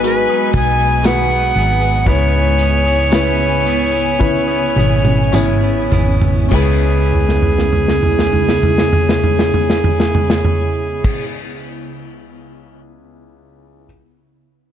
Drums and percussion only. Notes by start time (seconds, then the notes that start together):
0.04 closed hi-hat
0.53 kick, closed hi-hat
0.79 closed hi-hat
1.04 snare, closed hi-hat, tambourine
1.56 closed hi-hat
1.81 closed hi-hat
2.06 kick, closed hi-hat
2.59 closed hi-hat
3.11 snare, closed hi-hat, tambourine
3.66 closed hi-hat
4.20 kick, high tom
4.76 mid tom
5.05 mid tom
5.33 mid tom, tambourine
5.92 floor tom
6.22 floor tom
6.51 kick, crash, tambourine
7.13 floor tom
7.29 snare
7.42 floor tom
7.58 snare
7.73 floor tom
7.88 snare
8.03 floor tom
8.19 snare
8.33 floor tom
8.49 snare
8.63 floor tom
8.78 snare
8.93 floor tom
9.09 snare
9.24 floor tom
9.39 snare
9.54 floor tom
9.70 snare
9.84 floor tom
10.00 snare
10.15 floor tom
10.30 snare
10.44 floor tom
11.04 kick, crash